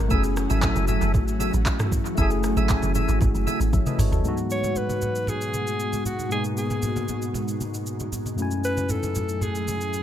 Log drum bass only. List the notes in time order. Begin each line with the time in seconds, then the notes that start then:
0.00 G#1
0.11 F#1
0.50 G#1
0.76 F#1
1.02 F#1
1.15 G#1
1.54 A1
2.18 F#1
2.57 G#1
2.83 F#1
3.09 G#1
3.22 G#1
3.35 F#1
3.60 G#1
3.73 G#1
3.98 G#1
4.12 F#1